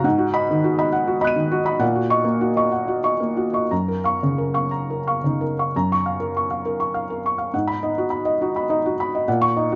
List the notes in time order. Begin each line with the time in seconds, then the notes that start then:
0.04 G#2 F#5
0.18 F#4
0.34 D#5 B5
0.50 D#3
0.64 F#4
0.78 D#5 B5
0.92 F#5
1.07 F#4
1.21 D#5 B5 F#6
1.27 D#7
1.36 D#3
1.52 F#4
1.65 D#5 B5
1.79 A#2 F#5
1.95 F#4
2.10 D#5 C#6
2.24 A#3
2.41 F#4
2.56 D#5 C#6
2.72 F#5
2.88 F#4
3.04 D#5 C#6
3.20 A#3
3.37 F#4
3.53 D#5 C#6
3.71 F#2 A#5
3.88 A#4
4.04 F5 C#6
4.23 C#3
4.38 A#4
4.54 F5 C#6
4.71 A#5
4.90 A#4
5.07 F5 C#6
5.24 C#3 D#4
5.41 A#4
5.59 F5 C#6
5.76 F#2 A#5
5.92 C#6
6.06 F5
6.20 A#4
6.37 C#6
6.51 F5
6.65 A#4
6.80 C#6
6.94 F5
7.10 A#4
7.26 C#6
7.38 F5
7.53 G#2 F#5
7.68 B5
7.83 D#4 D#5
7.98 F#4
8.10 B5
8.25 D#5
8.41 D#4 F#4
8.56 B5
8.69 D#4 D#5
8.86 F#4
9.00 B5
9.15 D#5
9.28 A#2 F#5
9.42 C#6
9.56 D#4 D#5
9.72 F#4